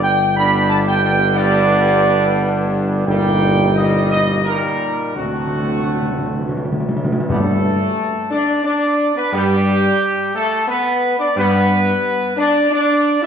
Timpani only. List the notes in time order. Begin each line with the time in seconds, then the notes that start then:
5.16 D3
5.24 D3
5.32 D3
5.40 D3
5.47 D3
5.55 D3
5.63 D3
5.71 D3
5.79 D3
5.87 D3
5.95 D3
6.02 D3
6.10 D3
6.18 D3
6.26 D3
6.34 D3
6.41 D3
6.49 D3
6.57 D3
6.65 D3
6.72 D3
6.80 D3
6.89 D3
6.97 D3
7.05 D3
7.12 D3
7.20 D3
7.29 G2